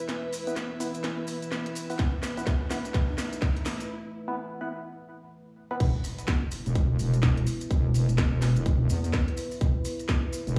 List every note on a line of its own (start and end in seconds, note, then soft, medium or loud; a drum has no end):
0.00 3.86 E3 medium
0.00 1.95 B3 medium
0.00 3.90 E4 medium
0.00 3.86 B4 medium
0.00 3.90 B4 medium
0.00 3.90 E5 medium
0.00 riser medium
0.09 snare medium
0.09 closed hi-hat medium
0.09 maracas soft
0.33 open hi-hat loud
0.33 maracas loud
0.47 0.55 B3 medium
0.47 0.55 E4 medium
0.47 0.55 B4 medium
0.47 closed hi-hat soft
0.47 maracas soft
0.56 snare medium
0.56 closed hi-hat medium
0.56 maracas soft
0.80 0.88 B3 medium
0.80 0.88 E4 medium
0.80 0.88 B4 medium
0.80 open hi-hat loud
0.80 maracas medium
0.94 closed hi-hat medium
0.94 maracas soft
1.04 snare medium
1.04 closed hi-hat medium
1.04 maracas soft
1.27 open hi-hat loud
1.27 maracas medium
1.42 closed hi-hat medium
1.42 maracas medium
1.52 snare medium
1.52 maracas soft
1.66 closed hi-hat medium
1.75 open hi-hat loud
1.75 maracas loud
1.90 1.95 B3 medium
1.90 1.95 E4 medium
1.90 1.95 B4 loud
1.90 open hi-hat medium
1.90 maracas soft
1.99 3.88 A3 medium
1.99 kick loud
1.99 snare medium
1.99 closed hi-hat medium
1.99 maracas soft
2.23 snare medium
2.23 open hi-hat loud
2.23 maracas medium
2.37 2.42 B3 medium
2.37 2.42 E4 medium
2.37 2.42 B4 loud
2.37 closed hi-hat soft
2.37 maracas medium
2.47 kick loud
2.47 snare medium
2.47 closed hi-hat medium
2.47 maracas soft
2.71 2.78 B3 medium
2.71 2.78 E4 medium
2.71 2.78 B4 medium
2.71 snare medium
2.71 open hi-hat loud
2.71 maracas medium
2.85 closed hi-hat soft
2.85 maracas medium
2.94 kick loud
2.94 snare medium
2.94 closed hi-hat medium
2.94 maracas soft
3.18 snare medium
3.18 open hi-hat loud
3.18 maracas loud
3.33 closed hi-hat medium
3.33 maracas medium
3.42 kick loud
3.42 snare medium
3.42 maracas soft
3.57 closed hi-hat medium
3.65 snare medium
3.65 open hi-hat loud
3.65 maracas medium
3.80 closed hi-hat medium
3.80 maracas medium
4.28 4.36 B3 medium
4.28 4.36 E4 medium
4.28 4.36 B4 medium
4.61 4.69 B3 medium
4.61 4.69 E4 medium
4.61 4.69 B4 medium
5.71 5.76 B3 medium
5.71 5.76 E4 medium
5.71 5.76 B4 loud
5.80 5.92 E1 loud
5.80 10.59 B3 medium
5.80 10.59 E4 medium
5.80 10.59 B4 medium
5.80 kick loud
5.80 closed hi-hat medium
5.80 crash loud
5.80 impact medium
5.80 maracas soft
6.04 open hi-hat loud
6.04 maracas medium
6.18 closed hi-hat medium
6.18 maracas soft
6.28 kick loud
6.28 snare loud
6.28 closed hi-hat medium
6.28 maracas soft
6.51 open hi-hat loud
6.51 maracas loud
6.66 6.98 E1 loud
6.66 closed hi-hat medium
6.66 maracas soft
6.75 kick loud
6.75 closed hi-hat medium
6.75 maracas soft
6.99 7.45 E1 medium
6.99 open hi-hat loud
6.99 maracas medium
7.14 closed hi-hat medium
7.14 maracas medium
7.23 kick loud
7.23 snare loud
7.23 maracas soft
7.37 closed hi-hat medium
7.47 open hi-hat loud
7.47 maracas medium
7.61 closed hi-hat medium
7.61 maracas medium
7.71 8.07 E1 loud
7.71 kick loud
7.71 closed hi-hat medium
7.71 maracas soft
7.94 open hi-hat loud
7.94 maracas medium
8.09 8.54 E1 medium
8.09 closed hi-hat medium
8.09 maracas medium
8.18 kick loud
8.18 snare loud
8.18 closed hi-hat medium
8.18 maracas soft
8.42 snare medium
8.42 open hi-hat loud
8.42 maracas medium
8.56 8.88 E1 loud
8.56 closed hi-hat medium
8.56 maracas medium
8.66 kick loud
8.66 closed hi-hat medium
8.66 maracas soft
8.90 9.12 E2 medium
8.90 open hi-hat loud
8.90 maracas loud
9.04 closed hi-hat medium
9.04 maracas medium
9.13 kick loud
9.13 snare loud
9.13 maracas soft
9.28 closed hi-hat medium
9.37 open hi-hat loud
9.37 maracas loud
9.51 open hi-hat medium
9.51 maracas medium
9.61 9.73 E1 loud
9.61 kick loud
9.61 closed hi-hat medium
9.61 maracas soft
9.85 open hi-hat loud
9.85 maracas loud
9.99 closed hi-hat medium
9.99 maracas medium
10.09 kick loud
10.09 snare loud
10.09 closed hi-hat medium
10.09 maracas soft
10.33 open hi-hat loud
10.33 maracas loud
10.47 10.59 E1 loud
10.47 closed hi-hat medium
10.47 maracas medium